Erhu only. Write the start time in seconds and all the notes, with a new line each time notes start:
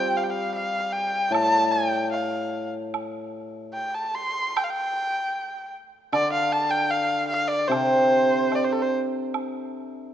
Already playing: G5
0.16 F5
0.23 G5
0.30 F5
0.54 F5
0.92 G5
1.32 A5
1.71 G5
2.12 F5
3.73 G5
3.94 A5
4.15 C6
4.56 G5
4.64 F5
4.70 G5
6.13 D5
6.32 F5
6.52 A5
6.70 G5
6.90 F5
7.28 F5
7.48 D5
7.67 C5
8.55 D5
8.64 C5
8.72 A4
8.82 C5